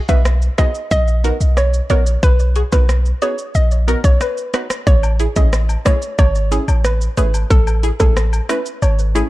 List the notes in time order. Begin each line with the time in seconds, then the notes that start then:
0.09 B1 B3 D#4 F#4 B4 E5, kick, shaker
0.25 cross-stick, shaker
0.42 shaker
0.58 B3 D#4 F#4 G#4 D#5, kick, cross-stick, closed hi-hat, shaker
0.75 shaker
0.91 A#1 D#5, kick, shaker
1.08 shaker
1.24 B3 D#4 F#4 A#4, closed hi-hat, shaker
1.41 B1, shaker
1.57 C#5, cross-stick, shaker
1.74 shaker
1.90 A#1 B3 D#4 F#4 A#4 C#5, closed hi-hat, shaker
2.06 shaker
2.23 B1 B4, kick, shaker
2.39 shaker
2.56 F#4 G#4, closed hi-hat, shaker
2.72 B1 B3 D#4 F#4 A#4 B4, kick, shaker
2.89 cross-stick, shaker
3.06 shaker
3.22 B3 D#4 F#4 G#4 C#5, closed hi-hat, shaker
3.38 shaker
3.55 A#1 D#5, shaker
3.71 shaker
3.88 B3 D#4 F#4 A#4, closed hi-hat, shaker
4.04 B1 C#5, kick, shaker
4.21 B4, cross-stick, shaker
4.37 shaker
4.54 B3 D#4 F#4 B4, cross-stick, closed hi-hat, shaker
4.70 cross-stick, shaker
4.87 A1 C#5, kick, shaker
5.03 high woodblock, shaker
5.20 E4 G#4, closed hi-hat, cabasa, shaker
5.36 A1 A3 C#4 E4 G#4 D#5, kick, shaker
5.53 cross-stick, shaker
5.69 high woodblock, shaker
5.85 A3 C#4 E4 G#4 C#5, kick, cross-stick, closed hi-hat, cabasa, shaker
6.02 shaker
6.18 G#1 C#5, kick, high woodblock, shaker
6.35 shaker
6.51 A3 C#4 E4 G#4, closed hi-hat, cabasa, shaker
6.68 A1, high woodblock, shaker
6.85 B4, cross-stick, shaker
7.01 shaker
7.17 G#1 A3 C#4 E4 G#4 B4, closed hi-hat, cabasa, shaker
7.34 high woodblock, shaker
7.50 A1 A4, kick, shaker
7.67 high woodblock, shaker
7.83 E4 G#4, closed hi-hat, cabasa, shaker
8.00 A1 A3 C#4 E4 G#4 A4, kick, shaker
8.17 cross-stick, shaker
8.33 high woodblock, shaker
8.49 A3 C#4 E4 B4, cross-stick, closed hi-hat, cabasa, shaker
8.66 shaker
8.82 G#1 C#5, high woodblock, shaker
8.99 shaker
9.15 A3 C#4 E4 G#4, closed hi-hat, cabasa, shaker